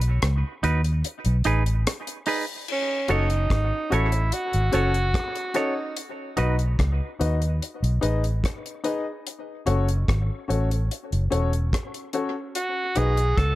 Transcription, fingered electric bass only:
Already playing: B1
0.23 C#2
0.64 D#2
1.26 B1
1.46 A1
3.10 F#1
3.51 G#1
3.92 A1
4.54 G#1
4.74 F#1
6.39 B1
6.80 C#2
7.21 D#2
7.83 B1
8.03 A1
9.67 F#1
10.09 G#1
10.50 A1
11.13 F#1
11.33 E1
12.97 B1
13.38 C#2

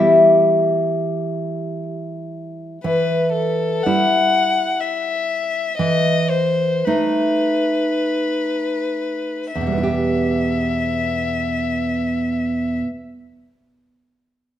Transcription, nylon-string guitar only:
Already playing: E3 G3 E4 G4 E5
2.84 E3
3.86 G3 E4
5.79 E3
6.87 A3 D#4
9.55 E2
9.61 B2
9.67 G3
9.72 B3
9.78 E4
9.83 G4

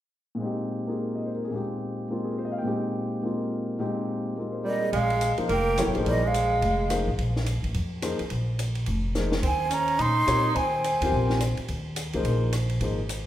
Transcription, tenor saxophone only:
4.64 G3
4.93 G#3
5.49 A#3
6.07 G3
6.23 G#3
9.43 C4
9.70 C#4
9.99 D#4
10.55 C4

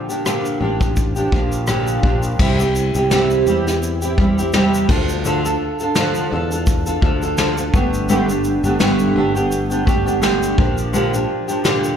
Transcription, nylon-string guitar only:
0.09 F3 A#3 D4 G4
0.25 A#2 D3 F3 A#3 D4 G4
0.60 F3 A#3 D4 G4
0.80 F3 A#3 D4 G4
1.16 F3 A#3 D4 G4
1.32 F3 A#3 D4 G4
1.67 A#2 D3 F3 A#3 D4 G4
2.04 F3 A#3 D4 G4
2.40 C3 G3 C4 E4 G4
2.59 C4 E4 G4
2.96 C4 E4 G4
3.12 C3 G3 C4 E4 G4
3.47 G3 C4 E4 G4
3.67 C4 E4 G4
4.02 C4 E4 G4
4.18 G3 C4 E4 G4
4.39 C4 E4 G4
4.54 C3 G3 C4 E4 G4
4.89 F3 D4 F4 A4
5.25 D3 F3 D4 F4 A4
5.45 D4 F4 A4
5.80 D4 F4 A4
5.97 D3 F3 D4 F4 A4
6.31 F3 D4 F4 A4
6.51 D4 F4 A4
6.86 D4 F4 A4
7.01 F3 D4 F4 A4
7.22 D4 F4 A4
7.37 D3 F3 D4 F4 A4
7.57 D4 F4 A4
7.74 A3 B3 D4 G4
8.09 G2 D3 A3 B3 D4 G4
8.28 A3 B3 D4 G4
8.64 A3 B3 D4 G4
8.80 G2 D3 A3 B3 D4 G4
9.16 A3 B3 D4 G4
9.34 A3 B3 D4 G4
9.70 A3 B3 D4 G4
9.85 A3 B3 D4 G4
10.06 A3 B3 D4 G4
10.22 G2 D3 A3 B3 D4 G4
10.58 F3 A#3 D4 G4
10.93 A#2 D3 F3 A#3 D4 G4
11.13 F3 A#3 D4 G4
11.48 F3 A#3 D4 G4
11.64 A#2 D3 F3 A#3 D4 G4

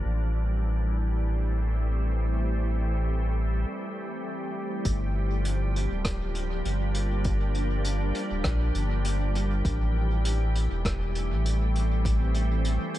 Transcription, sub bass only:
0.05 A1
4.85 G1
5.91 D1
6.65 G1
8.31 D1
8.45 A#1
8.75 G1
9.65 A1
10.71 E1
11.32 A1

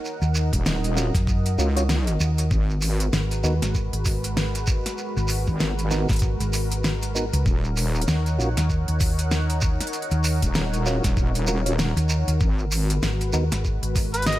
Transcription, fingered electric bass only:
0.22 D#2
1.15 F#2
2.20 D#2
3.13 G#1
3.44 D#2
3.62 G#1
3.93 G#1
5.17 G#1
6.09 G#1
6.40 G#1
7.33 C#2
8.08 D#2
8.39 A#1
8.57 D#2
8.88 D#2
10.11 D#2
11.97 D#2
12.28 D#2
13.02 G#1
13.33 D#2
13.52 G#1
13.82 G#1

